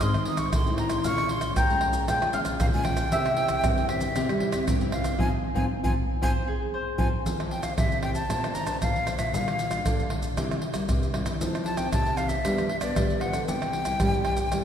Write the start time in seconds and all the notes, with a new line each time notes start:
0.01 G#2 G#3 C4 D#4 D#5 C6, pandeiro, tamborim, maracas, surdo
0.14 D#3, pandeiro, tamborim, maracas
0.25 G#3 C4 D#4 D#6, pandeiro
0.37 C#6, pandeiro, tamborim, maracas, surdo
0.53 A2 D#3 C6, pandeiro, tamborim, maracas, surdo
0.67 G#3 C4 D#4, pandeiro, maracas
0.78 A#5, pandeiro, tamborim
0.90 C6, pandeiro, tamborim, maracas, surdo
1.04 A#2 G#3 C#4 F4 F5 C#6, pandeiro, maracas, surdo
1.18 pandeiro, tamborim, maracas
1.29 G#3 C#4 F4 C6, pandeiro
1.41 pandeiro, tamborim, maracas, surdo
1.56 F3 A#3 G5 A#5, pandeiro, tamborim, maracas, surdo
1.70 G#3 C#4 F4, pandeiro, maracas
1.81 pandeiro, tamborim
1.93 pandeiro, maracas, surdo
2.08 A#2 G#3 C#4 F4 G5, pandeiro, tamborim, maracas, surdo
2.22 F3, pandeiro, tamborim, maracas
2.27 G5
2.33 G#3 C#4 F4 F5, pandeiro, maracas, surdo
2.45 pandeiro, tamborim, maracas, surdo
2.60 A#2 F3 F5, pandeiro, tamborim, maracas, surdo
2.73 G#3 C#4 F4 G#5, pandeiro, maracas
2.84 G5, pandeiro, tamborim
2.97 pandeiro, tamborim, maracas, surdo
3.12 C3 C4 E4 G4 E5, pandeiro, maracas, surdo
3.26 pandeiro, tamborim, maracas
3.37 C4 E4 G4, pandeiro
3.48 pandeiro, tamborim, maracas, surdo
3.63 G2 C4, pandeiro, tamborim, maracas, surdo
3.77 C4 E4 G4, pandeiro, maracas
3.89 E5, pandeiro, tamborim
4.01 pandeiro, maracas, surdo
4.15 C3 C4 E4 G4, pandeiro, tamborim, maracas, surdo
4.29 G3, pandeiro, tamborim, maracas
4.40 C4 E4 G4, pandeiro, surdo
4.52 pandeiro, tamborim, maracas, surdo
4.67 G2 C3, pandeiro, tamborim, maracas, surdo
4.81 C4 E4 G4, pandeiro, maracas
4.92 F5, pandeiro, tamborim
5.04 pandeiro, tamborim, maracas, surdo
5.18 F3 C4 D#4 F4 D#5 G#5, surdo
5.55 F3 C4 D#4 F4 G#5, surdo
5.84 F3 C4 D#4 F4 G#5, surdo
6.22 F3 C4 D#4 F4 C5 G#5, surdo
6.48 G#4
6.74 C5
6.98 F3 C4 D#4 F4 G#5, surdo
7.26 F3 C4 E4 A4, pandeiro, maracas, surdo
7.39 C4 E4 A4, pandeiro, tamborim, maracas
7.51 G5, pandeiro
7.63 F5, pandeiro, tamborim, maracas, surdo
7.77 C3 C4 E4 A4 E5, pandeiro, tamborim, maracas, surdo
7.92 pandeiro, maracas
8.02 G5, pandeiro, tamborim
8.14 A5, pandeiro, maracas, surdo
8.29 A#2 A#3 D4 A4 C5, pandeiro, tamborim, maracas, surdo
8.43 D4 A4 C5, pandeiro, tamborim, maracas
8.54 A#5, pandeiro, maracas, surdo
8.66 D4 A4 C5 A5, pandeiro, tamborim, maracas, surdo
8.81 A#2 F3 D4 A4 C5 F5, pandeiro, tamborim, maracas, surdo
8.96 pandeiro, maracas
9.06 D4 A4 C5, pandeiro, tamborim, maracas
9.17 A#2 E5, pandeiro, tamborim, maracas, surdo
9.33 A#2 G3 D4 F4 F5, pandeiro, maracas, surdo
9.48 pandeiro, tamborim, maracas
9.59 pandeiro, maracas
9.70 G3 D4 F4, pandeiro, tamborim, maracas, surdo
9.85 A#2 D3, pandeiro, tamborim, maracas, surdo
9.99 pandeiro, maracas
10.10 G3 D4 F4, pandeiro, tamborim
10.22 pandeiro, maracas, surdo
10.37 C3 G3 A#3 E4, pandeiro, tamborim, maracas, surdo
10.51 pandeiro, tamborim, maracas
10.62 pandeiro
10.73 G3 A#3 E4, pandeiro, tamborim, maracas, surdo
10.88 G2 C3, pandeiro, tamborim, maracas, surdo
11.03 pandeiro, maracas
11.14 G3 A#3 E4, pandeiro, tamborim
11.25 E3, pandeiro, tamborim, maracas, surdo
11.40 F3 C4 D#4 A4, pandeiro, maracas, surdo
11.55 pandeiro, tamborim, maracas
11.65 A5, pandeiro
11.77 C4 D#4 A4 G5, pandeiro, tamborim, maracas, surdo
11.92 C3 A5, pandeiro, tamborim, maracas, surdo
12.06 pandeiro, maracas
12.17 C4 D#4 A4 F5, pandeiro, tamborim, maracas
12.28 E5, pandeiro, maracas, surdo
12.45 G2 F3 G3 B3 D4, pandeiro, tamborim, maracas, surdo
12.58 pandeiro, tamborim, maracas
12.69 pandeiro
12.80 F3 B3 D4 D5, pandeiro, tamborim, maracas, surdo
12.96 D3 G3, pandeiro, tamborim, maracas, surdo
13.10 pandeiro, maracas
13.20 F3 B3 D4 F#5, pandeiro, tamborim
13.33 D3, pandeiro, tamborim, maracas, surdo
13.47 C3 G3 A#3 E4 G5, pandeiro, maracas, surdo
13.62 pandeiro, tamborim, maracas
13.73 pandeiro
13.84 G3 A#3 E4, pandeiro, tamborim, maracas, surdo
14.00 G2 G3, pandeiro, tamborim, maracas, surdo
14.14 pandeiro, maracas
14.25 G3 A#3 E4, pandeiro, tamborim
14.37 pandeiro, maracas, surdo
14.51 C3 G3 A#3 E4, pandeiro, tamborim, maracas, surdo